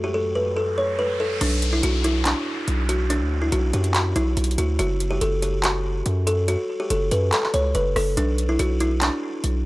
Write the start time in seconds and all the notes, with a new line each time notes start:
Already playing: F#2 F#3 A3 C#5, riser
0.04 G4
0.14 A4
0.35 B4
0.57 A4
0.78 C#5
0.99 B4
1.20 A4
1.41 B1 D4, closed hi-hat, crash, downlifter
1.62 closed hi-hat
1.73 E4
1.83 B1 F#4, closed hi-hat
2.04 E4, closed hi-hat
2.25 D4, clap, closed hi-hat
2.68 B1, closed hi-hat
2.89 F#4, closed hi-hat
3.10 D4, closed hi-hat
3.21 D2
3.42 E4
3.52 B1 F#4, closed hi-hat
3.73 F#2 G4, closed hi-hat
3.84 closed hi-hat
3.95 F#4, clap, closed hi-hat
4.16 B1 E4, closed hi-hat
4.37 B1, closed hi-hat
4.44 closed hi-hat
4.51 closed hi-hat
4.58 D2 F#4, closed hi-hat
4.79 F#1 F#4, closed hi-hat
5.00 closed hi-hat
5.11 G4
5.21 F#1 A4, closed hi-hat
5.42 G4, closed hi-hat
5.64 F#4, clap, closed hi-hat
6.06 F#2, closed hi-hat
6.27 A4, closed hi-hat
6.48 F#4, closed hi-hat
6.80 G4
6.90 F#1 A4, closed hi-hat
7.11 F#2 B4, closed hi-hat
7.33 A4, clap, closed hi-hat
7.43 clap
7.54 C#2 C#5, closed hi-hat
7.75 F#1 B4, closed hi-hat
7.96 F#1 A4, cross-stick, open hi-hat
8.17 B1 D4, closed hi-hat
8.38 closed hi-hat
8.49 E4
8.59 B1 F#4, closed hi-hat
8.80 E4, closed hi-hat
9.02 D4, clap, closed hi-hat
9.44 B1, closed hi-hat